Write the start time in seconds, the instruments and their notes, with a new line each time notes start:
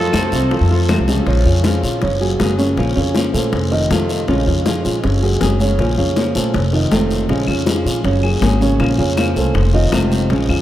Already playing: upright bass F2, grand piano F3 F4 A4, nylon-string guitar A3 C4 F4, trumpet A4
0.12 upright bass F2, nylon-string guitar C3 F3 A3 C4 F4, high bongo, high conga, short guiro, claves
0.31 upright bass C2, grand piano C3 C4 C5, nylon-string guitar A3 C4 F4, high bongo, short guiro
0.51 grand piano F3 F4 A4, muted nylon-string guitar stroke, high bongo, high conga, long guiro
0.61 upright bass F2
0.69 grand piano F3 F4 A4, nylon-string guitar A3 C4 F4, high bongo, high conga
0.89 nylon-string guitar C3 F3 A3 C4 F4, high bongo, low bongo, high conga, short guiro, claves
0.98 upright bass C2
1.08 grand piano C#3 C#4 C#5, high bongo, high conga, short guiro
1.27 upright bass A#1, grand piano C#3 C#4 C#5, nylon-string guitar F3 G#3 C#4 F4, high bongo, high conga, long guiro
1.45 upright bass F2, nylon-string guitar G#3 C#4 F4
1.64 nylon-string guitar F3 G#3 C#4 F4, grand piano F3 F4 G#4, high bongo, high conga, short guiro
1.83 upright bass A#2, nylon-string guitar G#3 C#4 F4, high conga, short guiro
2.02 upright bass F#1, grand piano C#3 C#4 C#5, muted nylon-string guitar stroke, high bongo, high conga, long guiro
2.21 grand piano F#3 F#4 G#4, nylon-string guitar A#3 C#4 G#4, high conga
2.39 upright bass F#1, nylon-string guitar F#3 A#3 C#4 G#4, high bongo, low bongo, high conga, short guiro
2.58 grand piano C#3 C#4 C#5, high conga, short guiro
2.77 upright bass A#1, nylon-string guitar F3 A#3 C#4 F4, high bongo, high conga, long guiro
2.96 upright bass F2, grand piano C#3 C#4 C#5, nylon-string guitar A#3 C#4 F4, high conga
3.15 nylon-string guitar F3 A#3 C#4 F4, high bongo, high conga, short guiro
3.34 upright bass A#2, grand piano A3 A4 C5, nylon-string guitar A#3 C#4 F4, high bongo, high conga, short guiro
3.52 upright bass F1, muted nylon-string guitar stroke, high bongo, high conga, long guiro
3.71 grand piano D#3 D#4 D#5, nylon-string guitar A3 C4 F4, high bongo, high conga
3.90 upright bass F2, nylon-string guitar C3 D#3 A3 C4 F4, grand piano A3 A4 C5, high bongo, low bongo, high conga, short guiro
4.09 high bongo, short guiro
4.28 upright bass A#1, grand piano C#3 C#4 C#5, nylon-string guitar F3 G#3 C#4 F4, high bongo, high conga, long guiro
4.46 upright bass F2, nylon-string guitar G#3 C#4 F4, high conga
4.66 nylon-string guitar F3 G#3 C#4 F4, grand piano F3 F4 G#4, high bongo, high conga, short guiro
4.85 upright bass A#2, nylon-string guitar G#3 C#4 F4, high conga, short guiro
5.04 upright bass F#1, grand piano C#3 C#4 C#5, muted nylon-string guitar stroke, high bongo, high conga, long guiro
5.22 grand piano F#3 F#4 G#4, nylon-string guitar A#3 C#4 G#4, high conga
5.41 upright bass F#1, nylon-string guitar F#3 A#3 C#4 G#4, high bongo, low bongo, high conga, short guiro
5.60 grand piano C#3 C#4 C#5, high conga, short guiro
5.78 upright bass A#1, nylon-string guitar F3 A#3 C#4 F4, high bongo, high conga, long guiro
5.97 upright bass F2, grand piano C#3 C#4 C#5, nylon-string guitar A#3 C#4 F4, high conga
6.16 nylon-string guitar F3 A#3 C#4 F4, high bongo, high conga, short guiro
6.35 upright bass A#2, grand piano A3 A4 C5, nylon-string guitar A#3 C#4 F4, high bongo, high conga, short guiro
6.54 upright bass F1, muted nylon-string guitar stroke, high bongo, high conga, long guiro
6.73 grand piano D#3 D#4 D#5, nylon-string guitar A3 C4 F4, high bongo, high conga
6.91 upright bass F1, nylon-string guitar C3 D#3 A3 C4 F4, grand piano A3 A4 C5, high bongo, low bongo, high conga, short guiro
7.10 high bongo, short guiro
7.29 upright bass A#1, grand piano C#3 C#4 C#5, nylon-string guitar F3 G#3 C#4 F4, high bongo, high conga, long guiro
7.47 upright bass F2, nylon-string guitar G#3 C#4 F4, high conga, claves
7.66 grand piano F3 F4 G#4, nylon-string guitar F3 G#3 C#4 F4, high bongo, high conga, short guiro
7.85 upright bass A#2, nylon-string guitar G#3 C#4 F4, high conga, short guiro
8.04 upright bass F#1, grand piano C#3 C#4 C#5, muted nylon-string guitar stroke, high bongo, high conga, long guiro
8.23 grand piano F#3 F#4 G#4, nylon-string guitar A#3 C#4 G#4, high conga, claves
8.41 upright bass G#1, nylon-string guitar F#3 A#3 C#4 G#4, high bongo, low bongo, high conga, short guiro
8.61 grand piano C#3 C#4 C#5, high conga, short guiro
8.79 upright bass A#1, nylon-string guitar F3 A#3 C#4 F4, high bongo, high conga, long guiro, claves
8.98 upright bass F2, grand piano C#3 C#4 C#5, nylon-string guitar A#3 C#4 F4, high conga
9.17 nylon-string guitar F3 A#3 C#4 F4, high bongo, high conga, short guiro, claves
9.36 upright bass C2, grand piano A3 A4 C5, nylon-string guitar A#3 C#4 F4, high bongo, high conga, short guiro
9.54 upright bass F1, muted nylon-string guitar stroke, high bongo, high conga, long guiro
9.73 grand piano D#3 D#4 D#5, nylon-string guitar A3 C4 F4, high bongo, high conga
9.92 upright bass F1, nylon-string guitar C3 D#3 A3 C4 F4, grand piano A3 A4 C5, high bongo, low bongo, high conga, short guiro, claves
10.11 high bongo, high conga, short guiro
10.29 upright bass A#1, grand piano C#3 C#4 C#5, nylon-string guitar F3 G#3 C#4 F4, high bongo, high conga, long guiro
10.49 upright bass F2, nylon-string guitar G#3 C#4 F4, high conga, claves